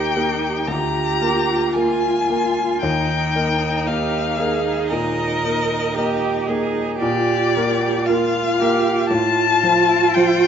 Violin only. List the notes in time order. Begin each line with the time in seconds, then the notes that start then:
Already playing: G5
0.67 A#5
1.74 G#5
2.81 G5
3.87 F5
4.89 D#5
7.00 D5
8.06 F5
9.09 A5
10.14 G5